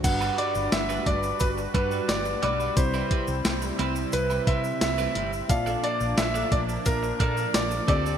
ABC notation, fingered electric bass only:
X:1
M:4/4
L:1/16
Q:1/4=88
K:G
V:1 name="Fingered electric bass" clef=bass
G,,,2 z G,,, G,,,2 G,,,2 G,,,2 G,,2 G,,,2 B,,,2 | C,,2 z C,, C,,2 C,,2 C,,2 C,2 C,,2 G,,,2 | _B,,,2 z B,,, B,,,2 B,,,2 B,,,2 _B,,2 B,,,2 D,,2 |]